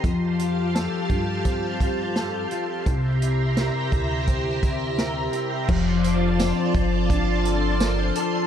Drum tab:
CC |--------|--------|x-------|
HH |xxxxxxxx|xxxxxxxx|-xxxxxxx|
TB |--------|--------|--x---x-|
SD |--o---o-|--o---o-|--o---o-|
BD |o--ooo--|o--ooo--|o--oo---|